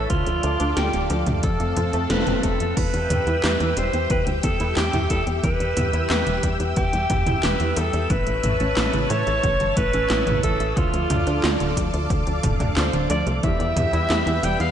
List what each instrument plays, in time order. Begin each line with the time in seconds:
0.10 analog synth bass D2, synth arpeggio sound D3, alto saxophone F4, analog synth pad A4 D5 F5 D6, kick, closed hi-hat
0.26 analog synth bass D2, synth arpeggio sound F3, closed hi-hat
0.43 analog synth bass D2, synth arpeggio sound A3, closed hi-hat
0.60 analog synth bass D2, synth arpeggio sound D4, closed hi-hat
0.77 analog synth bass D2, synth arpeggio sound F4, alto saxophone G4, snare, closed hi-hat
0.93 analog synth bass D1, synth arpeggio sound D3, closed hi-hat
1.10 analog synth bass D2, synth arpeggio sound F3, closed hi-hat
1.27 analog synth bass D2, synth arpeggio sound A3, closed hi-hat, mid tom
1.43 analog synth bass F2, synth arpeggio sound F3, analog synth pad C4 A4 A5, alto saxophone A4, kick, closed hi-hat
1.60 analog synth bass F2, synth arpeggio sound A3, closed hi-hat
1.77 analog synth bass F2, synth arpeggio sound C4, closed hi-hat, mid tom
1.93 analog synth bass F2, synth arpeggio sound A3, closed hi-hat
2.10 analog synth bass F1, synth arpeggio sound F3, alto saxophone B4, snare, closed hi-hat
2.27 analog synth bass F1, synth arpeggio sound C4, closed hi-hat, mid tom
2.43 analog synth bass F1, synth arpeggio sound A3, alto saxophone A4, kick, closed hi-hat
2.60 analog synth bass F2, synth arpeggio sound A3, closed hi-hat
2.77 analog synth bass E2, synth arpeggio sound E3, analog synth pad G4 E5 G5 E6, alto saxophone B4, kick, closed hi-hat, crash
2.94 analog synth bass E2, synth arpeggio sound G3, closed hi-hat
3.10 analog synth bass E2, synth arpeggio sound B3, closed hi-hat, mid tom
3.27 analog synth bass E2, synth arpeggio sound E4, closed hi-hat
3.44 analog synth bass E2, synth arpeggio sound G4, snare, clap, closed hi-hat
3.60 analog synth bass E2, synth arpeggio sound E3, closed hi-hat
3.77 analog synth bass E1, synth arpeggio sound G3, alto saxophone C5, closed hi-hat
3.93 analog synth bass E2, synth arpeggio sound B3, closed hi-hat
4.10 analog synth bass E2, synth arpeggio sound E3, alto saxophone B4, kick, closed hi-hat
4.27 analog synth bass D2, synth arpeggio sound G3, closed hi-hat
4.43 analog synth bass E2, synth arpeggio sound B3, alto saxophone A4, kick, closed hi-hat
4.60 analog synth bass E2, synth arpeggio sound E4, closed hi-hat
4.77 analog synth bass E2, alto saxophone G4, synth arpeggio sound G4, snare, clap, closed hi-hat
4.93 analog synth bass E2, synth arpeggio sound E3, closed hi-hat, mid tom
5.10 analog synth bass E2, synth arpeggio sound G3, alto saxophone A4, kick, closed hi-hat
5.27 analog synth bass E2, synth arpeggio sound B3, closed hi-hat
5.43 analog synth bass E2, synth arpeggio sound E3, alto saxophone B4, kick, closed hi-hat
5.60 analog synth bass E2, synth arpeggio sound G3, closed hi-hat
5.77 analog synth bass E2, synth arpeggio sound B3, closed hi-hat, mid tom
5.93 analog synth bass E2, synth arpeggio sound E4, closed hi-hat
6.10 analog synth bass E2, synth arpeggio sound G4, alto saxophone B4, snare, clap, closed hi-hat
6.27 analog synth bass E1, synth arpeggio sound E3, closed hi-hat
6.43 analog synth bass E2, synth arpeggio sound G3, kick, closed hi-hat
6.60 analog synth bass E2, synth arpeggio sound B3, closed hi-hat
6.76 analog synth bass E2, synth arpeggio sound E3, alto saxophone G4, kick, closed hi-hat
6.93 analog synth bass E2, synth arpeggio sound G3, closed hi-hat
7.10 analog synth bass E2, synth arpeggio sound B3, kick, closed hi-hat, mid tom
7.26 analog synth bass E2, synth arpeggio sound E4, closed hi-hat, mid tom
7.43 analog synth bass E1, synth arpeggio sound G4, alto saxophone B4, snare, clap, closed hi-hat
7.60 analog synth bass E2, synth arpeggio sound E3, closed hi-hat
7.77 analog synth bass E2, synth arpeggio sound G3, alto saxophone A4, closed hi-hat
7.93 analog synth bass E2, synth arpeggio sound B3, closed hi-hat
8.10 analog synth bass A1, synth arpeggio sound C#3, alto saxophone B4, analog synth pad C#5 A5, kick, closed hi-hat
8.27 analog synth bass A1, synth arpeggio sound E3, closed hi-hat
8.43 analog synth bass A1, synth arpeggio sound A3, closed hi-hat, mid tom
8.60 analog synth bass A1, synth arpeggio sound C#4, closed hi-hat
8.77 analog synth bass A1, synth arpeggio sound E4, snare, clap, closed hi-hat
8.93 analog synth bass A1, synth arpeggio sound C#3, closed hi-hat
9.10 analog synth bass A2, synth arpeggio sound E3, alto saxophone C#5, closed hi-hat
9.27 analog synth bass A1, synth arpeggio sound A3, closed hi-hat
9.43 analog synth bass A1, synth arpeggio sound C#3, kick, closed hi-hat
9.60 analog synth bass G1, synth arpeggio sound E3, closed hi-hat
9.77 analog synth bass A1, synth arpeggio sound A3, alto saxophone B4, kick, closed hi-hat
9.93 analog synth bass A1, synth arpeggio sound C#4, closed hi-hat
10.10 analog synth bass A1, synth arpeggio sound E4, snare, clap, closed hi-hat
10.27 analog synth bass A1, synth arpeggio sound C#3, closed hi-hat, mid tom
10.43 analog synth bass A1, synth arpeggio sound E3, alto saxophone A4, kick, closed hi-hat
10.60 analog synth bass A1, synth arpeggio sound A3, closed hi-hat
10.77 analog synth bass D2, synth arpeggio sound D3, alto saxophone F4, analog synth pad A4 D5 F5 D6, kick, closed hi-hat
10.94 analog synth bass D2, synth arpeggio sound F3, closed hi-hat
11.10 analog synth bass D2, synth arpeggio sound A3, closed hi-hat, mid tom
11.27 analog synth bass D2, synth arpeggio sound D4, closed hi-hat
11.44 analog synth bass D2, synth arpeggio sound F4, snare, clap, closed hi-hat
11.60 analog synth bass D1, synth arpeggio sound D3, closed hi-hat
11.77 analog synth bass D2, synth arpeggio sound F3, kick, closed hi-hat
11.93 analog synth bass D2, synth arpeggio sound A3, closed hi-hat
12.10 analog synth bass D2, synth arpeggio sound D3, kick, closed hi-hat
12.27 analog synth bass D2, synth arpeggio sound F3, closed hi-hat
12.43 analog synth bass D1, synth arpeggio sound A3, kick, closed hi-hat, mid tom
12.60 analog synth bass D2, synth arpeggio sound D4, closed hi-hat, mid tom
12.76 analog synth bass D2, synth arpeggio sound F4, alto saxophone C5, snare, clap, closed hi-hat
12.93 analog synth bass D1, synth arpeggio sound D3, closed hi-hat
13.10 analog synth bass D2, synth arpeggio sound F3, alto saxophone D5, closed hi-hat
13.27 analog synth bass C2, synth arpeggio sound A3, closed hi-hat
13.43 analog synth bass E2, synth arpeggio sound E3, analog polysynth G3 B3 E4 G4, analog synth pad B4 G5 E6, alto saxophone E5, kick, closed hi-hat
13.60 analog synth bass E2, synth arpeggio sound G3, closed hi-hat
13.76 analog synth bass E2, synth arpeggio sound B3, closed hi-hat, mid tom
13.93 analog synth bass E2, synth arpeggio sound E4, closed hi-hat
14.10 analog synth bass E2, synth arpeggio sound G4, snare, clap, closed hi-hat
14.26 analog synth bass E2, synth arpeggio sound E3, closed hi-hat
14.43 analog synth bass E1, analog polysynth E3 G3 B3 G4, synth arpeggio sound G3, alto saxophone G5, closed hi-hat
14.60 analog synth bass E2, synth arpeggio sound B3, alto saxophone F5, closed hi-hat